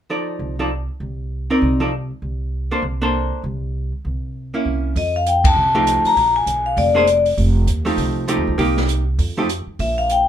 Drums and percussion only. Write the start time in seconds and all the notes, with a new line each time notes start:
4.96 kick, open hi-hat
5.26 closed hi-hat
5.44 kick, ride
5.87 closed hi-hat
6.05 open hi-hat
6.17 kick, open hi-hat
6.47 closed hi-hat
6.77 kick, open hi-hat
7.07 closed hi-hat
7.26 open hi-hat
7.38 kick, open hi-hat
7.67 closed hi-hat
7.86 open hi-hat
7.98 kick, open hi-hat
8.28 closed hi-hat
8.58 kick, open hi-hat
8.77 snare
8.89 closed hi-hat
9.19 kick, open hi-hat
9.49 closed hi-hat
9.79 kick, open hi-hat
10.10 closed hi-hat